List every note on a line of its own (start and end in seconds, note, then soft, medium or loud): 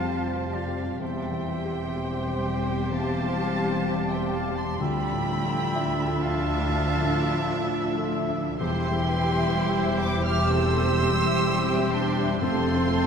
0.00 0.97 F1 soft
0.00 0.97 F2 soft
0.00 0.97 F2 medium
0.00 1.04 C3 soft
0.00 1.05 F3 medium
0.00 0.24 G3 soft
0.00 0.96 G3 medium
0.00 0.97 G3 medium
0.00 1.23 G3 soft
0.00 0.96 C4 medium
0.00 0.97 F4 medium
0.00 1.05 F4 soft
0.00 0.04 G4 soft
0.00 0.69 G4 medium
0.00 0.75 G4 soft
0.00 0.97 G4 medium
0.00 0.56 G4 soft
0.00 0.36 C5 soft
0.00 0.69 C5 medium
0.00 0.97 C5 medium
0.00 1.47 C5 soft
0.00 0.55 F5 medium
0.00 0.54 A5 medium
0.00 0.28 C6 soft
0.05 0.52 G5 soft
0.29 2.19 C6 soft
0.36 0.88 C5 soft
0.53 1.00 D5 medium
0.53 1.01 F5 medium
0.53 1.95 G5 soft
0.68 1.00 G4 soft
0.76 1.71 G4 soft
0.99 4.80 E1 medium
0.99 2.86 E2 medium
0.99 4.80 E2 medium
0.99 2.90 E3 medium
0.99 5.71 G3 medium
0.99 4.76 G3 medium
0.99 4.62 C4 medium
0.99 4.82 G4 medium
0.99 4.76 G4 medium
0.99 3.81 C5 medium
0.99 4.77 C5 medium
0.99 2.60 E5 medium
0.99 2.88 G5 medium
1.25 3.14 G3 soft
1.32 1.83 E3 soft
1.48 3.37 C5 soft
1.65 2.16 G3 soft
1.72 2.66 G4 soft
1.96 2.47 G4 medium
1.96 2.42 G5 soft
2.20 4.08 C6 medium
2.27 2.78 C5 soft
2.43 3.84 G5 medium
2.59 3.10 G4 soft
2.67 3.61 G4 soft
2.90 4.76 E2 medium
2.90 4.84 E3 medium
2.90 4.10 F5 medium
2.90 4.09 A5 medium
3.15 4.84 G3 soft
3.22 3.72 E3 soft
3.38 4.84 C5 soft
3.53 4.04 G3 soft
3.85 4.36 G4 medium
3.85 4.79 D5 medium
3.85 4.31 G5 soft
4.08 4.33 E5 medium
4.08 4.33 G5 medium
4.08 4.84 C6 medium
4.16 4.67 C5 soft
4.32 4.57 F5 medium
4.32 4.84 G5 medium
4.32 4.57 A5 medium
4.49 4.80 G4 soft
4.56 4.84 G4 medium
4.56 4.78 A5 medium
4.56 4.81 C6 medium
4.79 6.66 D2 medium
4.79 8.60 D2 medium
4.79 8.64 D3 medium
4.79 8.56 F3 medium
4.79 8.56 D4 medium
4.79 8.57 E4 medium
4.79 8.43 F4 medium
4.79 8.43 E5 medium
4.79 8.57 E5 medium
4.79 6.24 G5 loud
4.79 6.24 B5 loud
5.04 6.93 F3 soft
5.12 5.63 A2 soft
5.28 7.17 A4 medium
5.44 5.94 F3 soft
5.74 8.60 F3 medium
5.74 9.65 D5 medium
5.74 6.26 E5 medium
5.99 7.87 A5 medium
6.06 6.57 A4 medium
6.22 8.13 F5 medium
6.22 8.12 A5 medium
6.38 6.89 D4 soft
6.69 8.56 D2 medium
6.69 8.64 D4 medium
6.94 8.64 F3 soft
7.02 7.52 A2 medium
7.33 7.84 F3 medium
7.65 8.16 D4 medium
7.89 8.64 A5 medium
7.97 8.48 A4 medium
8.13 9.30 E5 medium
8.28 8.60 E5 medium
8.36 8.64 F4 medium
8.59 12.37 E1 medium
8.59 10.46 E2 medium
8.59 12.37 E2 medium
8.59 10.48 E3 medium
8.59 12.37 G3 medium
8.59 10.46 G3 medium
8.59 10.47 E4 medium
8.59 12.37 G4 medium
8.59 10.46 G4 medium
8.59 12.38 G4 medium
8.59 9.04 C5 medium
8.59 12.37 G5 medium
8.59 10.04 G5 loud
8.59 9.98 C6 loud
8.84 10.72 E4 medium
8.91 9.42 E3 medium
9.07 10.96 G4 medium
9.07 9.54 B4 medium
9.23 9.74 G3 medium
9.31 9.77 E5 medium
9.54 10.05 E4 medium
9.54 10.48 C5 medium
9.54 10.00 G5 medium
9.78 10.25 E5 medium
9.86 10.37 G4 medium
10.01 11.44 G5 medium
10.01 10.26 B5 medium
10.01 10.26 D6 loud
10.18 10.69 E4 medium
10.26 11.20 E5 medium
10.26 10.53 D6 medium
10.26 10.50 F6 loud
10.49 12.38 E2 medium
10.49 12.45 E3 medium
10.49 11.44 C4 medium
10.49 10.97 A4 medium
10.49 11.43 C5 medium
10.49 11.95 C6 loud
10.49 11.94 E6 loud
10.73 12.45 E4 medium
10.82 11.33 E3 medium
10.97 13.07 G4 medium
10.97 12.41 G4 medium
11.13 11.65 G3 medium
11.21 11.68 E5 medium
11.44 12.42 G3 medium
11.44 11.93 C4 medium
11.44 11.97 E4 medium
11.44 12.39 C5 medium
11.44 11.92 G5 medium
11.69 12.16 E5 medium
11.78 12.29 G4 medium
11.93 12.41 D4 medium
11.93 13.07 G5 medium
11.93 12.41 A5 medium
11.93 12.40 C6 medium
12.10 12.42 E4 medium
12.17 12.45 E5 medium
12.40 13.07 F1 medium
12.40 13.07 F2 medium
12.40 13.07 F3 medium
12.40 13.07 G3 medium
12.40 13.07 A3 medium
12.40 13.07 C4 medium
12.40 13.07 F4 medium
12.40 13.07 A4 medium
12.40 13.07 C5 medium
12.40 13.07 G5 medium
12.40 13.07 A5 loud
12.40 13.07 C6 loud
12.65 13.07 G3 medium
12.74 13.07 C3 medium
12.89 13.07 A4 medium